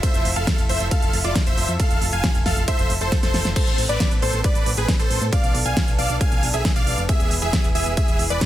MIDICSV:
0, 0, Header, 1, 6, 480
1, 0, Start_track
1, 0, Tempo, 441176
1, 34, Time_signature, 4, 2, 24, 8
1, 9202, End_track
2, 0, Start_track
2, 0, Title_t, "Digital synth lead"
2, 0, Program_c, 0, 84
2, 32, Note_on_c, 0, 76, 107
2, 315, Note_off_c, 0, 76, 0
2, 395, Note_on_c, 0, 77, 95
2, 677, Note_off_c, 0, 77, 0
2, 754, Note_on_c, 0, 76, 95
2, 942, Note_off_c, 0, 76, 0
2, 994, Note_on_c, 0, 77, 93
2, 1276, Note_off_c, 0, 77, 0
2, 1356, Note_on_c, 0, 74, 90
2, 1543, Note_off_c, 0, 74, 0
2, 1596, Note_on_c, 0, 76, 95
2, 1878, Note_off_c, 0, 76, 0
2, 1957, Note_on_c, 0, 77, 102
2, 2238, Note_off_c, 0, 77, 0
2, 2315, Note_on_c, 0, 80, 96
2, 2597, Note_off_c, 0, 80, 0
2, 2675, Note_on_c, 0, 77, 92
2, 2863, Note_off_c, 0, 77, 0
2, 2915, Note_on_c, 0, 76, 100
2, 3197, Note_off_c, 0, 76, 0
2, 3275, Note_on_c, 0, 72, 89
2, 3463, Note_off_c, 0, 72, 0
2, 3514, Note_on_c, 0, 72, 100
2, 3797, Note_off_c, 0, 72, 0
2, 3874, Note_on_c, 0, 72, 104
2, 4156, Note_off_c, 0, 72, 0
2, 4232, Note_on_c, 0, 74, 99
2, 4516, Note_off_c, 0, 74, 0
2, 4592, Note_on_c, 0, 72, 93
2, 4781, Note_off_c, 0, 72, 0
2, 4833, Note_on_c, 0, 74, 97
2, 5116, Note_off_c, 0, 74, 0
2, 5193, Note_on_c, 0, 71, 88
2, 5382, Note_off_c, 0, 71, 0
2, 5433, Note_on_c, 0, 72, 99
2, 5716, Note_off_c, 0, 72, 0
2, 5795, Note_on_c, 0, 77, 107
2, 6077, Note_off_c, 0, 77, 0
2, 6153, Note_on_c, 0, 80, 97
2, 6436, Note_off_c, 0, 80, 0
2, 6513, Note_on_c, 0, 77, 95
2, 6702, Note_off_c, 0, 77, 0
2, 6753, Note_on_c, 0, 80, 93
2, 7036, Note_off_c, 0, 80, 0
2, 7112, Note_on_c, 0, 76, 91
2, 7301, Note_off_c, 0, 76, 0
2, 7353, Note_on_c, 0, 77, 101
2, 7636, Note_off_c, 0, 77, 0
2, 7712, Note_on_c, 0, 76, 103
2, 7995, Note_off_c, 0, 76, 0
2, 8074, Note_on_c, 0, 76, 95
2, 8356, Note_off_c, 0, 76, 0
2, 8432, Note_on_c, 0, 76, 96
2, 8621, Note_off_c, 0, 76, 0
2, 8673, Note_on_c, 0, 76, 97
2, 8956, Note_off_c, 0, 76, 0
2, 9032, Note_on_c, 0, 74, 87
2, 9202, Note_off_c, 0, 74, 0
2, 9202, End_track
3, 0, Start_track
3, 0, Title_t, "Supersaw synth"
3, 0, Program_c, 1, 81
3, 32, Note_on_c, 1, 72, 79
3, 32, Note_on_c, 1, 76, 102
3, 315, Note_off_c, 1, 72, 0
3, 316, Note_off_c, 1, 76, 0
3, 393, Note_on_c, 1, 77, 100
3, 394, Note_on_c, 1, 69, 81
3, 676, Note_off_c, 1, 77, 0
3, 677, Note_off_c, 1, 69, 0
3, 754, Note_on_c, 1, 72, 74
3, 754, Note_on_c, 1, 76, 90
3, 942, Note_off_c, 1, 72, 0
3, 942, Note_off_c, 1, 76, 0
3, 995, Note_on_c, 1, 77, 96
3, 996, Note_on_c, 1, 69, 77
3, 1277, Note_off_c, 1, 69, 0
3, 1277, Note_off_c, 1, 77, 0
3, 1355, Note_on_c, 1, 65, 81
3, 1355, Note_on_c, 1, 74, 92
3, 1543, Note_off_c, 1, 65, 0
3, 1543, Note_off_c, 1, 74, 0
3, 1595, Note_on_c, 1, 72, 78
3, 1596, Note_on_c, 1, 76, 98
3, 1877, Note_off_c, 1, 72, 0
3, 1877, Note_off_c, 1, 76, 0
3, 1954, Note_on_c, 1, 69, 77
3, 1955, Note_on_c, 1, 77, 103
3, 2236, Note_off_c, 1, 69, 0
3, 2237, Note_off_c, 1, 77, 0
3, 2315, Note_on_c, 1, 77, 80
3, 2316, Note_on_c, 1, 80, 98
3, 2597, Note_off_c, 1, 77, 0
3, 2598, Note_off_c, 1, 80, 0
3, 2675, Note_on_c, 1, 69, 77
3, 2676, Note_on_c, 1, 77, 90
3, 2863, Note_off_c, 1, 69, 0
3, 2863, Note_off_c, 1, 77, 0
3, 2917, Note_on_c, 1, 72, 80
3, 2918, Note_on_c, 1, 76, 97
3, 3198, Note_off_c, 1, 72, 0
3, 3198, Note_off_c, 1, 76, 0
3, 3279, Note_on_c, 1, 69, 82
3, 3279, Note_on_c, 1, 72, 93
3, 3465, Note_off_c, 1, 69, 0
3, 3465, Note_off_c, 1, 72, 0
3, 3515, Note_on_c, 1, 72, 95
3, 3516, Note_on_c, 1, 69, 77
3, 3797, Note_off_c, 1, 69, 0
3, 3797, Note_off_c, 1, 72, 0
3, 3875, Note_on_c, 1, 69, 82
3, 3875, Note_on_c, 1, 72, 102
3, 4157, Note_off_c, 1, 69, 0
3, 4157, Note_off_c, 1, 72, 0
3, 4235, Note_on_c, 1, 71, 82
3, 4235, Note_on_c, 1, 74, 101
3, 4517, Note_off_c, 1, 71, 0
3, 4517, Note_off_c, 1, 74, 0
3, 4595, Note_on_c, 1, 69, 76
3, 4595, Note_on_c, 1, 72, 90
3, 4783, Note_off_c, 1, 69, 0
3, 4783, Note_off_c, 1, 72, 0
3, 4835, Note_on_c, 1, 71, 80
3, 4835, Note_on_c, 1, 74, 94
3, 5117, Note_off_c, 1, 71, 0
3, 5117, Note_off_c, 1, 74, 0
3, 5196, Note_on_c, 1, 68, 82
3, 5196, Note_on_c, 1, 71, 95
3, 5383, Note_off_c, 1, 68, 0
3, 5383, Note_off_c, 1, 71, 0
3, 5433, Note_on_c, 1, 69, 78
3, 5434, Note_on_c, 1, 72, 93
3, 5716, Note_off_c, 1, 69, 0
3, 5716, Note_off_c, 1, 72, 0
3, 5793, Note_on_c, 1, 74, 79
3, 5794, Note_on_c, 1, 77, 102
3, 6076, Note_off_c, 1, 74, 0
3, 6077, Note_off_c, 1, 77, 0
3, 6153, Note_on_c, 1, 77, 81
3, 6153, Note_on_c, 1, 80, 100
3, 6436, Note_off_c, 1, 77, 0
3, 6436, Note_off_c, 1, 80, 0
3, 6511, Note_on_c, 1, 74, 79
3, 6511, Note_on_c, 1, 77, 91
3, 6701, Note_off_c, 1, 74, 0
3, 6701, Note_off_c, 1, 77, 0
3, 6753, Note_on_c, 1, 77, 81
3, 6753, Note_on_c, 1, 80, 97
3, 7036, Note_off_c, 1, 77, 0
3, 7036, Note_off_c, 1, 80, 0
3, 7112, Note_on_c, 1, 68, 81
3, 7113, Note_on_c, 1, 76, 93
3, 7301, Note_off_c, 1, 68, 0
3, 7302, Note_off_c, 1, 76, 0
3, 7353, Note_on_c, 1, 74, 79
3, 7353, Note_on_c, 1, 77, 95
3, 7636, Note_off_c, 1, 74, 0
3, 7636, Note_off_c, 1, 77, 0
3, 7712, Note_on_c, 1, 68, 80
3, 7713, Note_on_c, 1, 76, 101
3, 7995, Note_off_c, 1, 68, 0
3, 7996, Note_off_c, 1, 76, 0
3, 8072, Note_on_c, 1, 68, 80
3, 8073, Note_on_c, 1, 76, 100
3, 8355, Note_off_c, 1, 68, 0
3, 8356, Note_off_c, 1, 76, 0
3, 8431, Note_on_c, 1, 76, 87
3, 8432, Note_on_c, 1, 68, 79
3, 8621, Note_off_c, 1, 68, 0
3, 8621, Note_off_c, 1, 76, 0
3, 8673, Note_on_c, 1, 68, 79
3, 8673, Note_on_c, 1, 76, 100
3, 8956, Note_off_c, 1, 68, 0
3, 8956, Note_off_c, 1, 76, 0
3, 9033, Note_on_c, 1, 74, 92
3, 9034, Note_on_c, 1, 71, 82
3, 9202, Note_off_c, 1, 71, 0
3, 9202, Note_off_c, 1, 74, 0
3, 9202, End_track
4, 0, Start_track
4, 0, Title_t, "Analog synth pad"
4, 0, Program_c, 2, 89
4, 0, Note_on_c, 2, 64, 76
4, 0, Note_on_c, 2, 65, 74
4, 0, Note_on_c, 2, 69, 88
4, 3830, Note_off_c, 2, 64, 0
4, 3831, Note_off_c, 2, 65, 0
4, 3872, Note_on_c, 2, 60, 74
4, 3873, Note_on_c, 2, 59, 83
4, 5751, Note_off_c, 2, 69, 0
4, 5774, Note_off_c, 2, 59, 0
4, 5774, Note_off_c, 2, 60, 0
4, 5793, Note_on_c, 2, 59, 82
4, 5793, Note_on_c, 2, 62, 73
4, 5794, Note_on_c, 2, 69, 89
4, 7694, Note_off_c, 2, 62, 0
4, 7695, Note_off_c, 2, 69, 0
4, 7715, Note_on_c, 2, 64, 76
4, 7715, Note_on_c, 2, 68, 92
4, 9202, Note_off_c, 2, 59, 0
4, 9202, Note_off_c, 2, 64, 0
4, 9202, Note_off_c, 2, 68, 0
4, 9202, End_track
5, 0, Start_track
5, 0, Title_t, "FM bass"
5, 0, Program_c, 3, 39
5, 153, Note_on_c, 3, 29, 91
5, 251, Note_off_c, 3, 29, 0
5, 273, Note_on_c, 3, 29, 103
5, 371, Note_off_c, 3, 29, 0
5, 394, Note_on_c, 3, 29, 95
5, 491, Note_off_c, 3, 29, 0
5, 633, Note_on_c, 3, 29, 93
5, 731, Note_off_c, 3, 29, 0
5, 753, Note_on_c, 3, 29, 101
5, 851, Note_off_c, 3, 29, 0
5, 873, Note_on_c, 3, 29, 92
5, 970, Note_off_c, 3, 29, 0
5, 1113, Note_on_c, 3, 29, 90
5, 1211, Note_off_c, 3, 29, 0
5, 1233, Note_on_c, 3, 29, 99
5, 1331, Note_off_c, 3, 29, 0
5, 1353, Note_on_c, 3, 29, 90
5, 1451, Note_off_c, 3, 29, 0
5, 1594, Note_on_c, 3, 29, 89
5, 1691, Note_off_c, 3, 29, 0
5, 1713, Note_on_c, 3, 29, 97
5, 1811, Note_off_c, 3, 29, 0
5, 1832, Note_on_c, 3, 41, 92
5, 1930, Note_off_c, 3, 41, 0
5, 2072, Note_on_c, 3, 29, 89
5, 2170, Note_off_c, 3, 29, 0
5, 2193, Note_on_c, 3, 29, 103
5, 2291, Note_off_c, 3, 29, 0
5, 2311, Note_on_c, 3, 29, 97
5, 2410, Note_off_c, 3, 29, 0
5, 2553, Note_on_c, 3, 29, 89
5, 2651, Note_off_c, 3, 29, 0
5, 2675, Note_on_c, 3, 29, 98
5, 2771, Note_off_c, 3, 29, 0
5, 2794, Note_on_c, 3, 29, 93
5, 2891, Note_off_c, 3, 29, 0
5, 3033, Note_on_c, 3, 29, 87
5, 3131, Note_off_c, 3, 29, 0
5, 3153, Note_on_c, 3, 29, 99
5, 3251, Note_off_c, 3, 29, 0
5, 3274, Note_on_c, 3, 29, 90
5, 3371, Note_off_c, 3, 29, 0
5, 3513, Note_on_c, 3, 29, 88
5, 3611, Note_off_c, 3, 29, 0
5, 3634, Note_on_c, 3, 29, 97
5, 3731, Note_off_c, 3, 29, 0
5, 3753, Note_on_c, 3, 29, 93
5, 3851, Note_off_c, 3, 29, 0
5, 3993, Note_on_c, 3, 33, 88
5, 4091, Note_off_c, 3, 33, 0
5, 4113, Note_on_c, 3, 33, 100
5, 4211, Note_off_c, 3, 33, 0
5, 4235, Note_on_c, 3, 33, 92
5, 4331, Note_off_c, 3, 33, 0
5, 4474, Note_on_c, 3, 33, 90
5, 4571, Note_off_c, 3, 33, 0
5, 4593, Note_on_c, 3, 33, 103
5, 4691, Note_off_c, 3, 33, 0
5, 4713, Note_on_c, 3, 33, 93
5, 4811, Note_off_c, 3, 33, 0
5, 4953, Note_on_c, 3, 33, 89
5, 5051, Note_off_c, 3, 33, 0
5, 5072, Note_on_c, 3, 33, 96
5, 5170, Note_off_c, 3, 33, 0
5, 5193, Note_on_c, 3, 33, 93
5, 5291, Note_off_c, 3, 33, 0
5, 5433, Note_on_c, 3, 33, 88
5, 5530, Note_off_c, 3, 33, 0
5, 5552, Note_on_c, 3, 33, 96
5, 5650, Note_off_c, 3, 33, 0
5, 5672, Note_on_c, 3, 45, 96
5, 5770, Note_off_c, 3, 45, 0
5, 5913, Note_on_c, 3, 35, 88
5, 6010, Note_off_c, 3, 35, 0
5, 6033, Note_on_c, 3, 35, 103
5, 6130, Note_off_c, 3, 35, 0
5, 6152, Note_on_c, 3, 35, 93
5, 6250, Note_off_c, 3, 35, 0
5, 6394, Note_on_c, 3, 35, 87
5, 6491, Note_off_c, 3, 35, 0
5, 6513, Note_on_c, 3, 35, 98
5, 6610, Note_off_c, 3, 35, 0
5, 6633, Note_on_c, 3, 35, 92
5, 6730, Note_off_c, 3, 35, 0
5, 6873, Note_on_c, 3, 35, 88
5, 6970, Note_off_c, 3, 35, 0
5, 6994, Note_on_c, 3, 35, 98
5, 7091, Note_off_c, 3, 35, 0
5, 7114, Note_on_c, 3, 35, 92
5, 7211, Note_off_c, 3, 35, 0
5, 7354, Note_on_c, 3, 35, 90
5, 7451, Note_off_c, 3, 35, 0
5, 7473, Note_on_c, 3, 35, 96
5, 7571, Note_off_c, 3, 35, 0
5, 7595, Note_on_c, 3, 29, 94
5, 7692, Note_off_c, 3, 29, 0
5, 7834, Note_on_c, 3, 28, 89
5, 7931, Note_off_c, 3, 28, 0
5, 7954, Note_on_c, 3, 28, 99
5, 8051, Note_off_c, 3, 28, 0
5, 8075, Note_on_c, 3, 28, 97
5, 8172, Note_off_c, 3, 28, 0
5, 8314, Note_on_c, 3, 28, 90
5, 8411, Note_off_c, 3, 28, 0
5, 8435, Note_on_c, 3, 28, 99
5, 8532, Note_off_c, 3, 28, 0
5, 8554, Note_on_c, 3, 28, 90
5, 8651, Note_off_c, 3, 28, 0
5, 8795, Note_on_c, 3, 28, 88
5, 8891, Note_off_c, 3, 28, 0
5, 8914, Note_on_c, 3, 28, 100
5, 9011, Note_off_c, 3, 28, 0
5, 9034, Note_on_c, 3, 28, 92
5, 9131, Note_off_c, 3, 28, 0
5, 9202, End_track
6, 0, Start_track
6, 0, Title_t, "Drums"
6, 34, Note_on_c, 9, 36, 115
6, 35, Note_on_c, 9, 42, 95
6, 35, Note_on_c, 9, 51, 72
6, 143, Note_off_c, 9, 36, 0
6, 144, Note_off_c, 9, 42, 0
6, 144, Note_off_c, 9, 51, 0
6, 154, Note_on_c, 9, 42, 57
6, 263, Note_off_c, 9, 42, 0
6, 274, Note_on_c, 9, 46, 100
6, 383, Note_off_c, 9, 46, 0
6, 395, Note_on_c, 9, 42, 54
6, 504, Note_off_c, 9, 42, 0
6, 514, Note_on_c, 9, 36, 113
6, 514, Note_on_c, 9, 38, 114
6, 514, Note_on_c, 9, 42, 93
6, 514, Note_on_c, 9, 51, 71
6, 623, Note_off_c, 9, 36, 0
6, 623, Note_off_c, 9, 38, 0
6, 623, Note_off_c, 9, 42, 0
6, 623, Note_off_c, 9, 51, 0
6, 635, Note_on_c, 9, 42, 55
6, 744, Note_off_c, 9, 42, 0
6, 754, Note_on_c, 9, 46, 91
6, 863, Note_off_c, 9, 46, 0
6, 875, Note_on_c, 9, 42, 56
6, 984, Note_off_c, 9, 42, 0
6, 994, Note_on_c, 9, 36, 116
6, 994, Note_on_c, 9, 42, 100
6, 994, Note_on_c, 9, 51, 70
6, 1102, Note_off_c, 9, 42, 0
6, 1102, Note_off_c, 9, 51, 0
6, 1103, Note_off_c, 9, 36, 0
6, 1114, Note_on_c, 9, 42, 56
6, 1223, Note_off_c, 9, 42, 0
6, 1234, Note_on_c, 9, 46, 100
6, 1343, Note_off_c, 9, 46, 0
6, 1354, Note_on_c, 9, 42, 55
6, 1463, Note_off_c, 9, 42, 0
6, 1474, Note_on_c, 9, 36, 116
6, 1474, Note_on_c, 9, 38, 115
6, 1474, Note_on_c, 9, 42, 94
6, 1474, Note_on_c, 9, 51, 72
6, 1583, Note_off_c, 9, 36, 0
6, 1583, Note_off_c, 9, 38, 0
6, 1583, Note_off_c, 9, 42, 0
6, 1583, Note_off_c, 9, 51, 0
6, 1594, Note_on_c, 9, 42, 57
6, 1703, Note_off_c, 9, 42, 0
6, 1714, Note_on_c, 9, 46, 86
6, 1823, Note_off_c, 9, 46, 0
6, 1834, Note_on_c, 9, 42, 54
6, 1943, Note_off_c, 9, 42, 0
6, 1954, Note_on_c, 9, 36, 112
6, 1954, Note_on_c, 9, 42, 97
6, 1954, Note_on_c, 9, 51, 71
6, 2063, Note_off_c, 9, 36, 0
6, 2063, Note_off_c, 9, 42, 0
6, 2063, Note_off_c, 9, 51, 0
6, 2074, Note_on_c, 9, 42, 57
6, 2183, Note_off_c, 9, 42, 0
6, 2194, Note_on_c, 9, 46, 104
6, 2302, Note_off_c, 9, 46, 0
6, 2314, Note_on_c, 9, 42, 53
6, 2423, Note_off_c, 9, 42, 0
6, 2434, Note_on_c, 9, 36, 116
6, 2434, Note_on_c, 9, 38, 123
6, 2434, Note_on_c, 9, 42, 100
6, 2434, Note_on_c, 9, 51, 67
6, 2542, Note_off_c, 9, 38, 0
6, 2542, Note_off_c, 9, 42, 0
6, 2542, Note_off_c, 9, 51, 0
6, 2543, Note_off_c, 9, 36, 0
6, 2554, Note_on_c, 9, 42, 55
6, 2663, Note_off_c, 9, 42, 0
6, 2674, Note_on_c, 9, 36, 61
6, 2674, Note_on_c, 9, 38, 63
6, 2674, Note_on_c, 9, 46, 92
6, 2783, Note_off_c, 9, 36, 0
6, 2783, Note_off_c, 9, 38, 0
6, 2783, Note_off_c, 9, 46, 0
6, 2794, Note_on_c, 9, 42, 54
6, 2903, Note_off_c, 9, 42, 0
6, 2914, Note_on_c, 9, 36, 120
6, 2914, Note_on_c, 9, 42, 100
6, 2914, Note_on_c, 9, 51, 70
6, 3023, Note_off_c, 9, 36, 0
6, 3023, Note_off_c, 9, 42, 0
6, 3023, Note_off_c, 9, 51, 0
6, 3034, Note_on_c, 9, 42, 57
6, 3142, Note_off_c, 9, 42, 0
6, 3154, Note_on_c, 9, 46, 106
6, 3263, Note_off_c, 9, 46, 0
6, 3275, Note_on_c, 9, 42, 55
6, 3384, Note_off_c, 9, 42, 0
6, 3394, Note_on_c, 9, 36, 116
6, 3395, Note_on_c, 9, 38, 60
6, 3395, Note_on_c, 9, 42, 93
6, 3395, Note_on_c, 9, 51, 69
6, 3503, Note_off_c, 9, 36, 0
6, 3503, Note_off_c, 9, 38, 0
6, 3503, Note_off_c, 9, 42, 0
6, 3503, Note_off_c, 9, 51, 0
6, 3515, Note_on_c, 9, 38, 64
6, 3515, Note_on_c, 9, 42, 58
6, 3623, Note_off_c, 9, 38, 0
6, 3623, Note_off_c, 9, 42, 0
6, 3635, Note_on_c, 9, 38, 85
6, 3635, Note_on_c, 9, 46, 89
6, 3744, Note_off_c, 9, 38, 0
6, 3744, Note_off_c, 9, 46, 0
6, 3754, Note_on_c, 9, 38, 82
6, 3754, Note_on_c, 9, 42, 54
6, 3863, Note_off_c, 9, 38, 0
6, 3863, Note_off_c, 9, 42, 0
6, 3874, Note_on_c, 9, 36, 121
6, 3874, Note_on_c, 9, 42, 100
6, 3874, Note_on_c, 9, 49, 77
6, 3874, Note_on_c, 9, 51, 67
6, 3983, Note_off_c, 9, 36, 0
6, 3983, Note_off_c, 9, 42, 0
6, 3983, Note_off_c, 9, 49, 0
6, 3983, Note_off_c, 9, 51, 0
6, 3994, Note_on_c, 9, 42, 56
6, 4103, Note_off_c, 9, 42, 0
6, 4114, Note_on_c, 9, 46, 108
6, 4223, Note_off_c, 9, 46, 0
6, 4234, Note_on_c, 9, 42, 52
6, 4343, Note_off_c, 9, 42, 0
6, 4354, Note_on_c, 9, 38, 125
6, 4354, Note_on_c, 9, 42, 96
6, 4354, Note_on_c, 9, 51, 67
6, 4355, Note_on_c, 9, 36, 124
6, 4463, Note_off_c, 9, 36, 0
6, 4463, Note_off_c, 9, 38, 0
6, 4463, Note_off_c, 9, 42, 0
6, 4463, Note_off_c, 9, 51, 0
6, 4475, Note_on_c, 9, 42, 56
6, 4584, Note_off_c, 9, 42, 0
6, 4594, Note_on_c, 9, 46, 90
6, 4703, Note_off_c, 9, 46, 0
6, 4714, Note_on_c, 9, 42, 55
6, 4823, Note_off_c, 9, 42, 0
6, 4833, Note_on_c, 9, 42, 96
6, 4833, Note_on_c, 9, 51, 67
6, 4835, Note_on_c, 9, 36, 127
6, 4942, Note_off_c, 9, 42, 0
6, 4942, Note_off_c, 9, 51, 0
6, 4943, Note_off_c, 9, 36, 0
6, 4953, Note_on_c, 9, 42, 56
6, 5062, Note_off_c, 9, 42, 0
6, 5073, Note_on_c, 9, 46, 104
6, 5182, Note_off_c, 9, 46, 0
6, 5194, Note_on_c, 9, 42, 56
6, 5302, Note_off_c, 9, 42, 0
6, 5315, Note_on_c, 9, 36, 123
6, 5315, Note_on_c, 9, 38, 121
6, 5315, Note_on_c, 9, 42, 95
6, 5315, Note_on_c, 9, 51, 66
6, 5423, Note_off_c, 9, 36, 0
6, 5423, Note_off_c, 9, 38, 0
6, 5423, Note_off_c, 9, 42, 0
6, 5423, Note_off_c, 9, 51, 0
6, 5435, Note_on_c, 9, 42, 57
6, 5544, Note_off_c, 9, 42, 0
6, 5555, Note_on_c, 9, 46, 93
6, 5664, Note_off_c, 9, 46, 0
6, 5675, Note_on_c, 9, 42, 54
6, 5784, Note_off_c, 9, 42, 0
6, 5794, Note_on_c, 9, 36, 121
6, 5795, Note_on_c, 9, 42, 96
6, 5795, Note_on_c, 9, 51, 67
6, 5903, Note_off_c, 9, 36, 0
6, 5904, Note_off_c, 9, 42, 0
6, 5904, Note_off_c, 9, 51, 0
6, 5915, Note_on_c, 9, 42, 54
6, 6024, Note_off_c, 9, 42, 0
6, 6034, Note_on_c, 9, 46, 107
6, 6143, Note_off_c, 9, 46, 0
6, 6155, Note_on_c, 9, 42, 55
6, 6264, Note_off_c, 9, 42, 0
6, 6274, Note_on_c, 9, 36, 123
6, 6275, Note_on_c, 9, 38, 127
6, 6275, Note_on_c, 9, 42, 93
6, 6275, Note_on_c, 9, 51, 66
6, 6383, Note_off_c, 9, 36, 0
6, 6384, Note_off_c, 9, 38, 0
6, 6384, Note_off_c, 9, 42, 0
6, 6384, Note_off_c, 9, 51, 0
6, 6395, Note_on_c, 9, 42, 56
6, 6504, Note_off_c, 9, 42, 0
6, 6514, Note_on_c, 9, 46, 96
6, 6623, Note_off_c, 9, 46, 0
6, 6635, Note_on_c, 9, 42, 54
6, 6744, Note_off_c, 9, 42, 0
6, 6754, Note_on_c, 9, 36, 127
6, 6755, Note_on_c, 9, 42, 97
6, 6755, Note_on_c, 9, 51, 65
6, 6863, Note_off_c, 9, 36, 0
6, 6864, Note_off_c, 9, 42, 0
6, 6864, Note_off_c, 9, 51, 0
6, 6875, Note_on_c, 9, 42, 55
6, 6983, Note_off_c, 9, 42, 0
6, 6995, Note_on_c, 9, 46, 109
6, 7103, Note_off_c, 9, 46, 0
6, 7114, Note_on_c, 9, 42, 55
6, 7223, Note_off_c, 9, 42, 0
6, 7234, Note_on_c, 9, 36, 127
6, 7235, Note_on_c, 9, 38, 124
6, 7235, Note_on_c, 9, 42, 93
6, 7235, Note_on_c, 9, 51, 64
6, 7343, Note_off_c, 9, 36, 0
6, 7343, Note_off_c, 9, 38, 0
6, 7343, Note_off_c, 9, 42, 0
6, 7343, Note_off_c, 9, 51, 0
6, 7354, Note_on_c, 9, 42, 54
6, 7462, Note_off_c, 9, 42, 0
6, 7474, Note_on_c, 9, 46, 94
6, 7583, Note_off_c, 9, 46, 0
6, 7594, Note_on_c, 9, 42, 53
6, 7703, Note_off_c, 9, 42, 0
6, 7714, Note_on_c, 9, 36, 123
6, 7714, Note_on_c, 9, 42, 94
6, 7714, Note_on_c, 9, 51, 64
6, 7822, Note_off_c, 9, 42, 0
6, 7822, Note_off_c, 9, 51, 0
6, 7823, Note_off_c, 9, 36, 0
6, 7834, Note_on_c, 9, 42, 53
6, 7943, Note_off_c, 9, 42, 0
6, 7953, Note_on_c, 9, 46, 111
6, 8062, Note_off_c, 9, 46, 0
6, 8074, Note_on_c, 9, 42, 51
6, 8183, Note_off_c, 9, 42, 0
6, 8194, Note_on_c, 9, 36, 127
6, 8194, Note_on_c, 9, 38, 123
6, 8194, Note_on_c, 9, 42, 89
6, 8194, Note_on_c, 9, 51, 62
6, 8303, Note_off_c, 9, 36, 0
6, 8303, Note_off_c, 9, 38, 0
6, 8303, Note_off_c, 9, 42, 0
6, 8303, Note_off_c, 9, 51, 0
6, 8314, Note_on_c, 9, 42, 53
6, 8423, Note_off_c, 9, 42, 0
6, 8434, Note_on_c, 9, 46, 98
6, 8542, Note_off_c, 9, 46, 0
6, 8554, Note_on_c, 9, 42, 52
6, 8663, Note_off_c, 9, 42, 0
6, 8673, Note_on_c, 9, 42, 91
6, 8673, Note_on_c, 9, 51, 66
6, 8674, Note_on_c, 9, 36, 127
6, 8782, Note_off_c, 9, 42, 0
6, 8782, Note_off_c, 9, 51, 0
6, 8783, Note_off_c, 9, 36, 0
6, 8793, Note_on_c, 9, 42, 55
6, 8902, Note_off_c, 9, 42, 0
6, 8913, Note_on_c, 9, 46, 112
6, 9022, Note_off_c, 9, 46, 0
6, 9034, Note_on_c, 9, 42, 53
6, 9142, Note_off_c, 9, 42, 0
6, 9153, Note_on_c, 9, 38, 125
6, 9153, Note_on_c, 9, 42, 88
6, 9153, Note_on_c, 9, 51, 66
6, 9154, Note_on_c, 9, 36, 126
6, 9202, Note_off_c, 9, 36, 0
6, 9202, Note_off_c, 9, 38, 0
6, 9202, Note_off_c, 9, 42, 0
6, 9202, Note_off_c, 9, 51, 0
6, 9202, End_track
0, 0, End_of_file